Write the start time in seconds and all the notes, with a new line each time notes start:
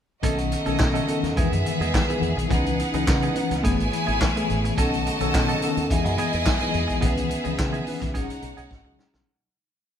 0.23 B1 C#3 D#3 F#3 A3 B3 C#4 D#4 F#4 A4 D#5, kick, closed hi-hat
0.38 muted clean electric guitar stroke, closed hi-hat
0.52 muted clean electric guitar stroke, closed hi-hat
0.66 B1 D#3 F#3 B3 C#4 D#4 A4, closed hi-hat
0.79 B2, muted clean electric guitar stroke, kick, snare, clap
0.94 F#3 C#4 D#4 A4, closed hi-hat
1.07 D#3 B3 C#4 A4, closed hi-hat
1.23 D#2, muted clean electric guitar stroke, snare, closed hi-hat
1.36 E2 B2 D#3 E3 G#3 B3 D#4 G#4 E5, kick, closed hi-hat
1.52 F#2, muted clean electric guitar stroke, closed hi-hat
1.66 muted clean electric guitar stroke, closed hi-hat
1.80 E2 G#3 B3 D#4 G#4, closed hi-hat
1.94 E3, muted clean electric guitar stroke, kick, snare, clap
2.09 D#3 E3 B3 G#4, muted clean electric guitar stroke, closed hi-hat
2.21 E2, closed hi-hat
2.36 B1, muted clean electric guitar stroke, closed hi-hat
2.49 C#2 E3 B3 C#4 D#4 G#4 B4 F#5, kick, closed hi-hat
2.66 muted clean electric guitar stroke, closed hi-hat
2.79 muted clean electric guitar stroke, closed hi-hat
2.94 C#2 E3 B3 C#4 D#4 G#4 B4, closed hi-hat
3.07 C#3, muted clean electric guitar stroke, kick, snare, clap
3.22 E3 B3 D#4 G#4, closed hi-hat
3.35 E3 C#4 D#4 B4, muted clean electric guitar stroke, closed hi-hat
3.51 C#2, muted clean electric guitar stroke, snare, closed hi-hat
3.62 F#1 E3 A3 B3 E4 G#4 C#5 G#5, kick, closed hi-hat
3.78 G#1, muted clean electric guitar stroke, closed hi-hat
3.91 muted clean electric guitar stroke, closed hi-hat
4.07 G#1 A3 B3 E4 G#4, closed hi-hat
4.20 muted clean electric guitar stroke, kick, snare, clap
4.36 E3 A3 B3 G#4, muted clean electric guitar stroke, closed hi-hat
4.50 A1, closed hi-hat
4.65 muted clean electric guitar stroke, closed hi-hat
4.77 B1 C#3 D#3 F#3 B3 C#4 D#4 F#4 A4 D#5 A5, kick, closed hi-hat
4.92 muted clean electric guitar stroke, closed hi-hat
5.06 muted clean electric guitar stroke, closed hi-hat
5.20 B1 D#3 F#3 B3 C#4 D#4 A4, closed hi-hat
5.34 B2, muted clean electric guitar stroke, kick, snare, clap
5.48 F#3 C#4 D#4 A4, closed hi-hat
5.62 D#3 B3 C#4 A4, muted clean electric guitar stroke, closed hi-hat
5.76 D#2, muted clean electric guitar stroke, closed hi-hat
5.90 E2 B2 E3 G#3 B3 D#4 E4 G#4 D#5 G#5, kick, closed hi-hat
6.05 F#2, muted clean electric guitar stroke, closed hi-hat
6.18 E3 B3 D#4 G#4, closed hi-hat
6.33 E2, closed hi-hat
6.46 E3, muted clean electric guitar stroke, kick, snare, clap
6.60 E3 B3 D#4 G#4, muted clean electric guitar stroke, closed hi-hat
6.74 E2, closed hi-hat
6.88 B1, muted clean electric guitar stroke, closed hi-hat
7.01 C#2 E3 B3 C#4 D#4 G#4 E5, kick, closed hi-hat
7.05 D#3 B4
7.16 muted clean electric guitar stroke, closed hi-hat
7.29 muted clean electric guitar stroke, closed hi-hat
7.44 C#2 D#3 E3 B3 C#4 D#4 G#4, closed hi-hat
7.48 G#4
7.57 C#3, muted clean electric guitar stroke, kick, snare, clap
7.73 E3 B3 D#4 G#4, closed hi-hat
7.87 E3 C#4 D#4 B4, open hi-hat
8.00 C#2, muted clean electric guitar stroke, kick, snare, closed hi-hat
8.14 G#1 C#3 F#3 G#3 C#4 D#4 F#4 G#4 C#5 F#5, kick, closed hi-hat
8.29 muted clean electric guitar stroke, closed hi-hat
8.41 B1, muted clean electric guitar stroke, closed hi-hat
8.57 B1 F#3 C#4 D#4 G#4, closed hi-hat
8.70 G#1, muted clean electric guitar stroke, kick, snare
8.85 C#2 F#3 C#4 D#4 G#4, muted clean electric guitar stroke
8.99 snare
9.14 B1, muted clean electric guitar stroke, snare